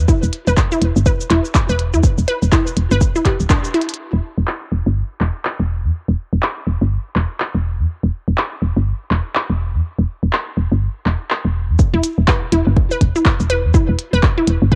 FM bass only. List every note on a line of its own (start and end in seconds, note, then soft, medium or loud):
0.23 0.30 E1 medium
0.47 0.54 E1 medium
0.82 0.92 E1 medium
0.96 1.12 G1 loud
1.30 1.41 E1 loud
1.69 1.95 E1 medium
1.94 2.01 E2 medium
2.18 2.25 E1 loud
2.42 2.49 E1 medium
2.77 2.87 E1 medium
2.91 3.07 G1 loud
3.40 3.47 D1 medium
4.13 4.20 E1 medium
4.38 4.45 E1 medium
4.72 4.82 E1 medium
4.86 5.02 G1 loud
5.21 5.31 E1 loud
5.60 5.86 E1 medium
5.84 5.91 E2 medium
6.08 6.15 E1 medium
6.33 6.40 E1 medium
6.67 6.77 E1 medium
6.81 6.98 G1 loud
7.16 7.26 E1 loud
7.55 7.80 E1 medium
7.79 7.86 E2 medium
8.03 8.10 E1 medium
8.28 8.35 E1 medium
8.62 8.72 E1 medium
8.77 8.93 G1 loud
9.11 9.21 E1 medium
9.50 9.76 E1 medium
9.74 9.81 E2 medium
9.99 10.06 E1 medium
10.23 10.30 E1 medium
10.57 10.68 E1 medium
10.72 10.88 G1 loud
11.06 11.16 E1 loud
11.45 11.71 E1 medium
11.69 11.76 E2 medium
11.94 12.01 E1 medium
12.18 12.25 E1 medium
12.52 12.63 E1 medium
12.67 12.83 G1 loud
13.01 13.11 E1 loud
13.40 13.66 E1 medium
13.64 13.71 E2 medium
13.89 13.96 E1 loud
14.13 14.20 E1 medium
14.47 14.58 E1 medium
14.62 14.75 G1 loud